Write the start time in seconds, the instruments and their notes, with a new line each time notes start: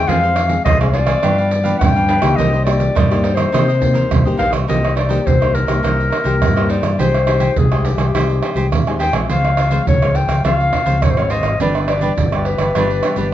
Already playing: nylon-string guitar G#3 C4 G#4
0.07 fingered electric bass F2, nylon-string guitar F3, cavaquinho F4 G#4 C5 F5, clarinet F5, pandeiro, shaker, surdo
0.22 cavaquinho G#4 C5 F5, pandeiro, shaker
0.36 muted cavaquinho stroke, pandeiro, tamborim, shaker
0.49 nylon-string guitar G#3 C4 G#4, pandeiro, shaker
0.65 fingered electric bass C2, nylon-string guitar C3, cavaquinho F4 G#4 C5 F5, clarinet D#5, pandeiro, tamborim, shaker, surdo
0.80 nylon-string guitar G#3 C4 G#4, cavaquinho G#4 C5 F5, pandeiro, tamborim, shaker
0.93 cavaquinho F4 G#4 C5 F5, clarinet D5, pandeiro
1.06 cavaquinho G#4 C5 F5, pandeiro, tamborim, shaker
1.23 nylon-string guitar G2 F3 B3 D4, fingered electric bass G2, cavaquinho D4 G4 B4 F5, pandeiro, tamborim, shaker, surdo
1.38 cavaquinho G4 B4 F5, pandeiro, shaker
1.51 muted cavaquinho stroke, pandeiro, shaker
1.64 nylon-string guitar F3 B3 D4, cavaquinho G4 B4 F5, pandeiro, shaker
1.79 fingered electric bass G2, nylon-string guitar D3, clarinet G5, pandeiro, tamborim, shaker, surdo
1.95 nylon-string guitar F3 B3 D4, cavaquinho G4 B4 F5, pandeiro, shaker
2.08 cavaquinho D4 G4 B4 F5, pandeiro
2.21 fingered electric bass C#2, nylon-string guitar A#3 D#4 G4, cavaquinho G4 B4 F5, pandeiro, tamborim, shaker
2.36 fingered electric bass C2, nylon-string guitar C3, cavaquinho D#4 A#4 C5, clarinet D#5, pandeiro, shaker, surdo
2.40 cavaquinho D#5
2.53 cavaquinho A#4 C5 D#5, pandeiro, shaker
2.64 nylon-string guitar A#3 D#4 G4, clarinet D5, muted cavaquinho stroke, pandeiro, tamborim
2.80 pandeiro, shaker
2.95 nylon-string guitar G2, fingered electric bass G2, cavaquinho D#4 A#4 C5 D#5, pandeiro, tamborim, shaker, surdo
3.10 nylon-string guitar A#3 D#4 G4, cavaquinho A#4 C5 D#5, pandeiro, tamborim, shaker
3.23 cavaquinho D#4 A#4 C5 D#5, pandeiro
3.35 cavaquinho A#4 C5 D#5, clarinet C5, pandeiro, tamborim, shaker
3.52 nylon-string guitar C3 A#3 D#4 G4, fingered electric bass C3, cavaquinho D#4 A#4 C5 D#5, pandeiro, tamborim, shaker, surdo
3.68 cavaquinho A#4 C5 D#5, pandeiro, shaker
3.81 nylon-string guitar A#3 D#4 G4, muted cavaquinho stroke, pandeiro, surdo
3.93 cavaquinho A#4 C5 D#5, pandeiro, shaker
4.11 fingered electric bass C2, nylon-string guitar G2, pandeiro, tamborim, shaker, surdo
4.25 fingered electric bass G1, nylon-string guitar A#3 D#4 G4, cavaquinho A#4 C5 D#5, pandeiro, shaker
4.37 fingered electric bass A#1, cavaquinho D#4 A#4 C5 D#5, clarinet F5, pandeiro
4.50 fingered electric bass C2, cavaquinho A#4 C5 D#5, pandeiro, tamborim, shaker
4.68 fingered electric bass C2, nylon-string guitar C3 A#3 D#4 G4, cavaquinho D#4 A#4 C5 D#5, clarinet D#5, pandeiro, shaker, surdo
4.85 pandeiro, tamborim, shaker
4.95 cavaquinho D#4 A#4 C5 D#5, clarinet D5, pandeiro, tamborim
5.09 nylon-string guitar A#3 D#4 G4, cavaquinho D#4 A#4 C5 D#5, pandeiro, shaker
5.26 fingered electric bass C2, nylon-string guitar G2, clarinet C5, pandeiro, shaker, surdo
5.40 nylon-string guitar A#3 D#4 G4, cavaquinho A#4 C5 D#5, pandeiro, tamborim, shaker
5.55 clarinet A#4, pandeiro, shaker
5.66 fingered electric bass C2, nylon-string guitar A#3 D#4 G4, cavaquinho A#4 C5 D#5, pandeiro, tamborim, shaker
5.83 fingered electric bass C2, nylon-string guitar C3 A#3 D#4 G4, cavaquinho D#4 A#4 C5 D#5, pandeiro, tamborim, shaker, surdo
6.00 pandeiro, shaker
6.10 cavaquinho D#4 A#4 C5 D#5, pandeiro, tamborim
6.24 fingered electric bass C2, nylon-string guitar A#3 D#4 G4, cavaquinho D#4 A#4 C5 D#5, pandeiro, shaker
6.42 fingered electric bass G2, nylon-string guitar G2, pandeiro, tamborim, shaker, surdo
6.56 nylon-string guitar A#3 D#4 G4, cavaquinho A#4 C5 D#5, pandeiro, tamborim, shaker
6.69 cavaquinho D#4 A#4 C5 D#5, clarinet D5, pandeiro
6.83 fingered electric bass G2, cavaquinho A#4 C5 D#5, pandeiro, tamborim, shaker
6.99 fingered electric bass C2, nylon-string guitar C3 G#3 D#4 G4, cavaquinho G4 C5 D#5 G#5, clarinet C5, pandeiro, shaker, surdo
7.14 pandeiro, tamborim, shaker
7.27 nylon-string guitar G#3 D#4 G4, cavaquinho G4 C5 D#5 G#5, pandeiro, tamborim, shaker
7.40 cavaquinho G4 C5 D#5 G#5, pandeiro, shaker
7.56 fingered electric bass C2, nylon-string guitar C3, clarinet G#4, pandeiro, shaker, surdo
7.72 nylon-string guitar G#3 D#4 G4, cavaquinho C5 D#5 G#5, pandeiro, tamborim, shaker
7.85 clarinet G4, pandeiro
7.97 fingered electric bass C2, nylon-string guitar G#3 D#4 G4, cavaquinho C5 D#5 G#5, pandeiro, tamborim, shaker
8.14 fingered electric bass C2, nylon-string guitar C3 G#3 D#4 G4, cavaquinho G4 C5 D#5 G#5, pandeiro, tamborim, shaker, surdo
8.30 pandeiro, shaker
8.43 cavaquinho G4 C5 D#5 G#5, pandeiro, tamborim
8.55 fingered electric bass C2, nylon-string guitar G#3 D#4 G4, cavaquinho G4 C5 D#5 G#5, pandeiro, shaker
8.72 fingered electric bass D#2, nylon-string guitar C3, pandeiro, tamborim, shaker, surdo
8.87 nylon-string guitar G#3 D#4 G4, cavaquinho C5 D#5 G#5, pandeiro, tamborim, shaker
8.99 cavaquinho G4 C5 D#5 G#5, clarinet G5, pandeiro
9.13 fingered electric bass A#1, nylon-string guitar F3 G#3 C4, cavaquinho C5 D#5 G#5, pandeiro, tamborim, shaker
9.29 fingered electric bass C#2, nylon-string guitar C#3, cavaquinho F4 C5 C#5 F5, clarinet F5, pandeiro, shaker, surdo
9.45 pandeiro, tamborim, shaker
9.57 cavaquinho F4 C5 C#5 F5, pandeiro, tamborim
9.71 nylon-string guitar F3 G#3 C4, cavaquinho F4 C5 C#5 F5, pandeiro, shaker
9.87 fingered electric bass C#2, nylon-string guitar G#2, clarinet C#5, pandeiro, shaker, surdo
10.02 nylon-string guitar F3 G#3 C4, cavaquinho C5 C#5 F5, pandeiro, tamborim, shaker
10.15 clarinet G5, pandeiro, shaker
10.28 fingered electric bass C#2, cavaquinho C5 C#5 F5, pandeiro, tamborim, shaker
10.44 fingered electric bass C#2, nylon-string guitar C#3 F3 G#3 C4, cavaquinho F4 C5 C#5 F5, clarinet F5, pandeiro, tamborim, shaker, surdo
10.60 pandeiro, shaker
10.72 cavaquinho F4 C5 C#5 F5, pandeiro, tamborim, surdo
10.86 fingered electric bass C#2, nylon-string guitar F3 G#3 C4, cavaquinho F4 C5 C#5 F5, pandeiro, shaker
11.02 fingered electric bass G#1, nylon-string guitar G#2, clarinet C#5, pandeiro, tamborim, shaker, surdo
11.10 clarinet C5
11.17 nylon-string guitar F3 G#3 C4, cavaquinho C5 C#5 F5, clarinet C#5, pandeiro, tamborim, shaker
11.30 cavaquinho F4 C5 C#5 F5, clarinet D#5, pandeiro
11.43 fingered electric bass G#1, cavaquinho C5 C#5 F5, pandeiro, tamborim, shaker
11.60 fingered electric bass G1, nylon-string guitar G2 G3 B3 D4, cavaquinho D4 G4 B4 D5, clarinet D5, pandeiro, shaker, surdo
11.75 pandeiro, tamborim, shaker
11.88 cavaquinho D4 G4 B4 D5, clarinet D5, pandeiro, tamborim
12.01 nylon-string guitar G3 B3 D4, cavaquinho D4 G4 B4 D5, pandeiro, shaker
12.18 fingered electric bass G1, nylon-string guitar D3, pandeiro, shaker, surdo
12.32 nylon-string guitar G3 B3 D4, cavaquinho G4 B4 D5, pandeiro, tamborim, shaker
12.45 clarinet B4, pandeiro
12.58 fingered electric bass G1, cavaquinho G4 B4 D5, pandeiro, tamborim, shaker
12.75 fingered electric bass G1, nylon-string guitar G2 G3 B3 D4, cavaquinho D4 G4 B4 D5, pandeiro, tamborim, shaker, surdo
12.91 pandeiro, shaker
13.03 cavaquinho D4 G4 B4 D5, pandeiro, tamborim, shaker
13.16 fingered electric bass G1, nylon-string guitar G3 B3 D4, cavaquinho D4 G4 B4 D5, pandeiro, shaker